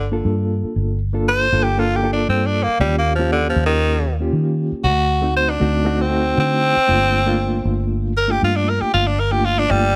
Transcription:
0.00 0.21 G1 medium
0.11 0.97 A#3 medium
0.11 0.97 D4 medium
0.11 0.98 F4 medium
0.11 0.98 A4 medium
0.25 0.61 G2 medium
0.64 muted fingered electric bass stroke soft
0.76 1.48 G1 medium
1.13 1.46 A#3 medium
1.13 1.46 D4 medium
1.13 1.46 F4 medium
1.13 1.47 A4 medium
1.28 1.65 C5 loud
1.52 2.25 G1 medium
1.52 1.74 A#3 medium
1.52 1.74 D4 medium
1.52 1.74 F4 medium
1.52 1.75 A4 medium
1.63 1.80 G4 loud
1.77 1.99 A#3 medium
1.77 2.00 D4 medium
1.77 2.00 F4 medium
1.77 1.97 F4 medium
1.77 2.00 A4 medium
1.96 2.12 G4 medium
2.03 2.68 A#3 medium
2.03 2.68 D4 medium
2.03 2.68 F4 medium
2.03 2.69 A4 medium
2.13 2.29 D4 medium
2.29 2.65 G2 medium
2.29 2.47 C4 medium
2.46 2.64 D4 medium
2.63 2.80 A#3 medium
2.68 muted fingered electric bass stroke soft
2.79 3.52 D#2 medium
2.79 2.97 G3 loud
2.79 3.12 A#3 medium
2.79 3.13 C#4 medium
2.79 3.13 F4 medium
2.79 3.13 G4 medium
2.98 3.14 A#3 medium
3.15 3.31 F3 medium
3.15 4.04 A#3 medium
3.15 4.04 C#4 medium
3.20 4.04 F4 medium
3.20 4.05 G4 medium
3.32 3.48 D3 loud
3.49 3.65 F3 medium
3.56 4.29 D#2 medium
3.66 4.15 D#3 loud
4.20 4.84 A#3 medium
4.20 4.84 C#4 medium
4.20 4.85 F4 medium
4.20 4.85 G4 medium
4.33 4.69 D#3 medium
4.72 muted fingered electric bass stroke soft
4.84 5.57 D2 medium
4.84 5.34 F#4 loud
5.21 5.54 A3 medium
5.21 5.54 C4 medium
5.21 5.55 D#4 medium
5.21 5.55 F#4 medium
5.36 5.51 C5 loud
5.50 6.03 D4 medium
5.60 6.33 D2 medium
5.60 5.82 A3 medium
5.60 5.82 C4 medium
5.60 5.82 D#4 medium
5.60 5.83 F#4 medium
5.85 6.07 A3 medium
5.85 6.07 C4 medium
5.85 6.08 D#4 medium
5.85 6.08 F#4 medium
6.01 6.37 C4 medium
6.09 6.75 A3 medium
6.09 6.76 C4 medium
6.09 6.76 D#4 medium
6.09 6.76 F#4 medium
6.37 6.73 D3 medium
6.37 7.88 C4 loud
6.76 muted fingered electric bass stroke soft
6.87 7.61 G1 medium
6.87 7.20 A3 medium
6.87 7.20 A#3 medium
6.87 7.20 D4 medium
6.87 7.21 F4 medium
7.25 8.12 A3 medium
7.25 8.12 A#3 medium
7.25 8.12 D4 medium
7.25 8.13 F4 loud
7.65 8.38 G1 medium
8.17 8.33 A#4 loud
8.28 9.14 A3 medium
8.28 9.14 A#3 medium
8.28 9.14 D4 medium
8.28 9.15 F4 medium
8.28 8.42 G4 medium
8.42 8.78 G2 medium
8.42 8.57 F4 medium
8.56 8.71 D4 medium
8.70 8.83 A#4 medium
8.81 8.92 G4 medium
8.81 muted fingered electric bass stroke soft
8.94 9.66 G1 medium
8.94 9.08 F4 loud
9.07 9.21 D4 medium
9.19 9.33 A#4 medium
9.31 9.63 A3 medium
9.31 9.64 A#3 medium
9.31 9.64 D4 medium
9.31 9.64 F4 medium
9.31 9.46 G4 medium
9.45 9.60 F4 loud
9.59 9.72 D4 loud
9.69 9.96 G1 medium
9.69 9.96 G3 loud
9.69 9.91 A3 medium
9.69 9.91 A#3 medium
9.69 9.91 D4 medium
9.69 9.91 F4 medium

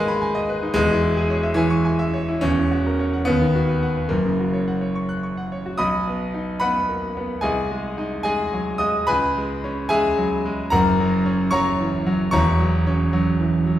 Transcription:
0.00 0.71 G#1 medium
0.00 0.72 G#2 medium
0.00 0.78 D#3 medium
0.00 0.72 G#3 loud
0.00 0.78 A#3 loud
0.00 0.63 D#4 medium
0.00 0.79 G#4 medium
0.00 0.49 B4 medium
0.00 0.35 D#5 medium
0.00 0.16 G#5 medium
0.08 0.30 B5 medium
0.22 0.44 G#5 medium
0.35 0.57 D#5 medium
0.49 0.71 B4 medium
0.63 0.76 D#4 medium
0.74 2.38 E1 medium
0.74 2.39 E2 medium
0.74 1.57 G#3 loud
0.90 1.12 E3 medium
1.04 1.25 E4 medium
1.17 1.39 G#4 medium
1.30 1.52 C#5 medium
1.43 1.66 E5 medium
1.54 2.41 E3 loud
1.54 1.79 G#5 medium
1.70 1.93 C#6 medium
1.85 2.08 G#5 medium
1.99 2.22 E5 medium
2.14 2.37 C#5 medium
2.28 2.43 E4 medium
2.41 3.24 E1 medium
2.41 3.24 E2 medium
2.41 3.26 C#4 loud
2.57 2.79 E3 medium
2.71 2.93 F#4 medium
2.86 3.08 A#4 medium
2.99 3.21 C#5 medium
3.13 3.27 F#5 medium
3.25 4.09 D#2 medium
3.25 4.10 B3 loud
3.41 3.63 D#3 medium
3.55 3.77 F#4 medium
3.68 3.91 B4 medium
3.82 4.05 F#5 medium
3.97 4.11 B4 medium
4.09 5.75 F#1 medium
4.09 5.75 F#2 medium
4.09 5.50 A#3 medium
4.25 4.48 C#3 soft
4.40 4.62 F#4 soft
4.53 4.76 C#5 medium
4.68 4.90 F#5 medium
4.81 5.04 C#5 medium
4.95 5.18 C#6 medium
5.09 5.32 F#6 medium
5.23 5.46 C#6 medium
5.37 5.60 F#5 medium
5.52 5.74 C#5 medium
5.66 5.80 F#4 medium
5.78 7.40 B1 medium
5.78 6.58 D#5 medium
5.78 6.58 B5 medium
5.78 6.61 D#6 loud
6.07 6.51 B3 medium
6.34 6.78 D#4 medium
6.60 7.06 B3 medium
6.60 7.39 B4 medium
6.60 7.40 F#5 medium
6.60 7.43 B5 loud
6.89 7.16 A#3 medium
7.17 7.44 B3 medium
7.41 9.05 C2 medium
7.41 8.22 G#4 medium
7.41 8.21 D#5 medium
7.41 8.22 G#5 loud
7.71 8.15 G#3 medium
7.98 8.42 D#4 medium
8.23 8.70 G#3 medium
8.23 8.77 G#4 medium
8.23 8.77 D#5 medium
8.23 8.80 G#5 loud
8.53 8.81 F#3 medium
8.78 9.08 G#3 medium
8.78 9.06 D#5 medium
8.78 9.07 D#6 loud
9.07 10.68 C#2 medium
9.07 9.86 B4 loud
9.07 9.86 G#5 medium
9.07 9.90 B5 loud
9.37 9.80 G#3 medium
9.64 10.07 C#4 medium
9.89 10.34 G#3 medium
9.89 10.67 G#4 loud
9.89 10.67 E5 medium
9.89 10.71 G#5 loud
10.17 10.45 F#3 medium
10.45 10.72 G#3 medium
10.70 12.29 F#1 medium
10.70 12.30 F#2 loud
10.70 11.49 A#4 medium
10.70 11.49 F#5 medium
10.70 11.50 A#5 loud
11.00 11.43 F#3 medium
11.26 11.69 C#4 medium
11.51 11.96 F#3 medium
11.51 12.02 C#5 loud
11.51 12.02 A#5 loud
11.51 12.05 C#6 loud
11.80 12.07 E3 medium
12.06 12.33 F#3 medium
12.31 13.79 E1 medium
12.31 13.79 E2 medium
12.31 13.79 C#5 loud
12.31 13.79 A#5 loud
12.31 13.79 C#6 loud
12.60 13.02 F#3 medium
12.87 13.29 C#4 medium
13.13 13.55 F#3 medium
13.39 13.66 E3 medium
13.66 13.79 F#3 medium

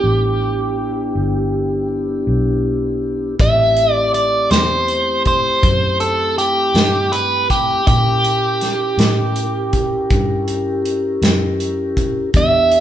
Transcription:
0.00 1.12 A1 medium
0.00 3.35 B3 medium
0.00 3.35 D4 medium
0.00 3.35 E4 medium
0.00 1.88 G4 medium
0.00 3.35 G4 medium
1.15 2.24 G1 medium
2.27 3.36 B1 medium
3.39 4.48 A1 medium
3.39 7.83 A3 medium
3.39 7.83 C4 medium
3.39 7.82 E4 medium
3.39 7.83 G4 medium
3.39 3.93 E5 medium
3.39 kick medium
3.39 closed hi-hat medium
3.77 closed hi-hat soft
3.93 4.11 D5 medium
4.14 4.49 D5 medium
4.14 closed hi-hat soft
4.51 5.60 E2 medium
4.51 5.22 C5 medium
4.51 snare medium
4.51 closed hi-hat medium
4.88 closed hi-hat soft
5.25 5.97 C5 medium
5.25 kick medium
5.25 closed hi-hat medium
5.63 6.71 F#2 medium
5.63 kick medium
5.63 closed hi-hat medium
6.00 6.35 A4 medium
6.00 closed hi-hat medium
6.38 7.15 G4 medium
6.38 closed hi-hat medium
6.74 7.83 G2 medium
6.74 snare loud
6.74 closed hi-hat medium
7.12 7.47 B4 medium
7.12 closed hi-hat medium
7.50 7.87 G4 medium
7.50 kick medium
7.50 closed hi-hat medium
7.87 8.95 A#2 medium
7.87 12.30 C#4 medium
7.87 12.30 E4 medium
7.87 12.30 G4 medium
7.87 10.81 G4 medium
7.87 12.30 A#4 medium
7.87 kick loud
7.87 closed hi-hat medium
8.24 closed hi-hat medium
8.61 snare soft
8.61 closed hi-hat medium
8.98 10.07 A2 medium
8.98 snare medium
8.98 closed hi-hat medium
9.36 closed hi-hat medium
9.73 kick medium
9.73 closed hi-hat medium
10.10 11.19 G2 medium
10.10 kick medium
10.10 closed hi-hat medium
10.48 closed hi-hat medium
10.85 closed hi-hat soft
11.22 12.30 F#2 medium
11.22 snare medium
11.22 closed hi-hat medium
11.60 closed hi-hat medium
11.97 kick medium
11.97 closed hi-hat medium
12.34 12.80 E2 medium
12.34 12.80 B3 medium
12.34 12.80 D4 medium
12.34 12.80 E4 medium
12.34 12.80 G4 medium
12.34 12.80 E5 medium
12.34 kick loud
12.34 closed hi-hat medium
12.72 closed hi-hat medium

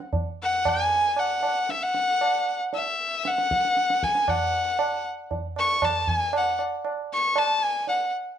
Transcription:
0.00 tabla te medium
0.13 tabla tin medium
0.13 tabla ge medium
0.43 0.70 F#5 medium
0.65 1.21 G#5 loud
0.65 tabla na medium
0.65 tabla ge medium
1.16 1.72 F#5 medium
1.16 tabla na medium
1.43 tabla na medium
1.69 1.84 E5 medium
1.69 tabla te medium
1.83 2.61 F#5 loud
1.94 tabla te medium
2.21 tabla na medium
2.73 3.29 E5 medium
2.73 tabla tin medium
3.25 4.05 F#5 medium
3.25 tabla te medium
3.38 tabla te medium
3.51 tabla ke medium
3.65 tabla te medium
3.77 tabla te medium
3.90 tabla te medium
4.03 4.31 G#5 medium
4.03 tabla ke medium
4.15 tabla te medium
4.28 5.06 F#5 medium
4.28 tabla na medium
4.28 tabla ge medium
4.79 tabla na medium
5.31 tabla tin medium
5.31 tabla ge medium
5.56 5.86 C#6 loud
5.56 tabla na medium
5.82 6.11 A5 medium
5.82 tabla na medium
5.82 tabla ge medium
6.07 6.35 G#5 medium
6.07 tabla ge medium
6.33 tabla na medium
6.37 6.60 F#5 medium
6.59 tabla na medium
6.85 tabla na medium
7.14 7.40 C#6 medium
7.36 7.65 A5 loud
7.36 tabla na medium
7.64 7.88 G#5 medium
7.87 8.12 F#5 medium
7.87 tabla tin medium

